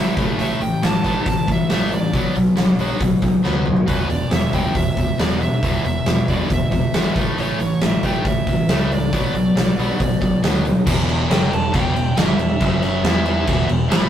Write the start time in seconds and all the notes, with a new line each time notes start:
Already playing: E2 B2 E3 E5
0.17 A1 A2 E3 A3, kick, open hi-hat
0.39 A1 A2 E3 A3 E5, open hi-hat
0.60 A1 A2 E3 G5, open hi-hat
0.82 A1 A2 E3 A5, snare, open hi-hat
1.03 A1 A2 E3 A3, kick, open hi-hat
1.26 A1 A2 E3 A5, kick, open hi-hat
1.47 A1 A2 E3, kick, open hi-hat
1.52 E5
1.69 A1 A2 E3 A3 E5, snare, open hi-hat
1.92 A2 E3 D5, open hi-hat
2.13 B1 B2 F#3 B3, kick, open hi-hat
2.35 B1 B2 F#3, open hi-hat
2.56 B1 B2 F#3, snare, open hi-hat
2.79 B1 B2 F#3 B3, open hi-hat
3.00 B1 B2 F#3, kick, open hi-hat
3.22 B1 B2 F#3, kick, open hi-hat
3.43 D2 B2 F#3 B3, snare
3.55 high tom
3.66 B2 F#3, mid tom
3.77 floor tom
3.86 E1 E2 B2 E3 B4, kick, open hi-hat, crash
4.09 E1 E2 B2 D5, open hi-hat
4.31 E1 E2 B2 E5, snare, open hi-hat
4.52 E1 E2 B2 E3 G5, kick, open hi-hat
4.75 E1 E2 B2 E5, kick, open hi-hat
4.96 E1 E2 B2, kick, open hi-hat
5.18 E1 E2 B2 E3 D5, snare, open hi-hat
5.41 E2 B2 E5, open hi-hat
5.63 E1 E2 B2 E3, kick, open hi-hat
5.84 E1 E2 B2 E5, open hi-hat
6.06 E1 E2 B2, snare, open hi-hat
6.28 E1 E2 B2 E3 D5, kick, open hi-hat
6.50 E1 E2 B2 E5, kick, open hi-hat
6.71 E1 E2 B2, kick, open hi-hat
6.94 G#1 E2 B2 E3, snare, open hi-hat
7.15 A1 A2 E3 A3, kick, open hi-hat
7.37 A1 A2 E3 A3 C#5, open hi-hat
7.59 A1 A2 E3, open hi-hat
7.81 A1 A2 E3 E5, snare, open hi-hat
8.03 A1 A2 E3 A3 G5, kick, open hi-hat
8.25 A1 A2 E3 E5, kick, open hi-hat
8.47 A1 A2 E3, kick, open hi-hat
8.69 C#2 A2 E3 A3, snare, open hi-hat
8.92 A2 E3 D5, open hi-hat
9.12 B1 B2 F#3 B3, kick, open hi-hat
9.34 B1 B2 F#3, open hi-hat
9.55 B1 B2 F#3, snare, open hi-hat
9.77 B1 B2 F#3 B3, open hi-hat
10.00 B1 B2 F#3, kick, open hi-hat
10.21 B1 B2 F#3, kick, open hi-hat
10.42 D2 B2 F#3 B3, snare, open hi-hat
10.64 B2 F#3, open hi-hat
10.86 E1 E2 B2 E3, kick, crash
11.09 crash
11.29 F#1 F#2 C#3 F#3 G5, snare, crash
11.50 E1 E2 B2 A5, crash
11.72 E1 E2 B2 E3 G5, kick, crash
11.95 E1 E2 B2, crash
12.16 G1 G2 D3 G3 E5, snare, crash
12.38 E1 E2 B2, crash
12.60 F#1 F#2 C#3 F#3, kick, crash
12.82 E5, crash
13.03 E2 E3 B3 E4, snare, crash
13.26 crash
13.46 E1 E2 B2 E3, kick, crash
13.68 E1 E2 B2, crash
13.88 A1 A2 E3 A3 B5, snare, crash